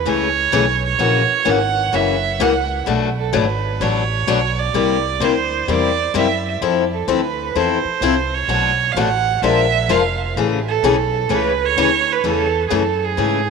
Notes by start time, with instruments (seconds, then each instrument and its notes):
Already playing: violin B4
0.06 upright bass C#2, steel-string acoustic guitar C#3 E3 A3 C#4 G#4, violin C#5
0.52 upright bass B1, steel-string acoustic guitar C#3 E3 A3 C#4 G#4
0.86 violin C#5
0.99 upright bass A#1, steel-string acoustic guitar C#3 E3 A#3 C#4 F#4
1.29 muted upright bass stroke
1.45 upright bass G#1, steel-string acoustic guitar C#3 E3 A#3 C#4 F#4
1.50 violin F#5
1.93 upright bass F#1, steel-string acoustic guitar C#3 E3 A#3 C#4 F#4, violin E5
2.40 upright bass C#2, steel-string acoustic guitar C#3 E3 A#3 C#4 F#4, violin F#5
2.86 upright bass B1, steel-string acoustic guitar B2 F#3 A3 D4 F#4
3.19 violin A4
3.33 upright bass G#1, steel-string acoustic guitar B2 F#3 A3 D4 F#4, violin B4
3.80 upright bass A1, steel-string acoustic guitar B2 F#3 A3 D4 F#4, violin C#5
4.27 upright bass B1, steel-string acoustic guitar B2 F#3 A3 D4 F#4
4.59 violin D5
4.74 upright bass C2, steel-string acoustic guitar C3 G3 A#3 E4 G4
5.20 upright bass D2, steel-string acoustic guitar C3 G3 A#3 E4 G4
5.24 violin C5
5.65 upright bass E2, steel-string acoustic guitar C3 G3 A#3 E4 G4, violin C5
5.70 violin D5
6.14 upright bass F#2, steel-string acoustic guitar C3 G3 A#3 E4 G4, violin E5
6.61 upright bass F2, steel-string acoustic guitar F3 C4 E4 A4
6.94 violin A4
7.07 upright bass D2, steel-string acoustic guitar F3 C4 E4 A4
7.13 violin B4
7.55 upright bass E2, steel-string acoustic guitar F3 C4 E4 A4, violin C5
7.84 muted upright bass stroke
8.01 upright bass C2, steel-string acoustic guitar F3 C4 E4 A4
8.34 violin C#5
8.48 upright bass B1, steel-string acoustic guitar B2 F#3 A3 D4 F#4
8.92 upright bass A1, violin F5
8.96 steel-string acoustic guitar B2 F#3 A3 D4 F#4, violin F#5
9.42 upright bass A#1, steel-string acoustic guitar F3 G#3 D4 F4 A#4, violin E5
9.89 upright bass F1, steel-string acoustic guitar F3 G#3 D4 F4 A#4, violin F5
10.36 upright bass A1, steel-string acoustic guitar C#3 E3 A3 C#4 G#4
10.68 violin A4
10.83 upright bass B1, steel-string acoustic guitar C#3 E3 A3 C#4 G#4
11.29 upright bass C#2, steel-string acoustic guitar C#3 E3 A3 C#4 G#4
11.35 violin B4
11.65 violin C#5
11.77 upright bass D2, steel-string acoustic guitar C#3 E3 A3 C#4 G#4
12.12 violin B4
12.24 upright bass E2, steel-string acoustic guitar C#3 E3 A3 C#4 G#4
12.28 violin A4
12.68 upright bass F#2, steel-string acoustic guitar C#3 E3 A3 C#4 G#4, violin G#4
12.75 violin A4
13.04 violin G#4
13.17 upright bass G#2, steel-string acoustic guitar C#3 E3 A3 C#4 G#4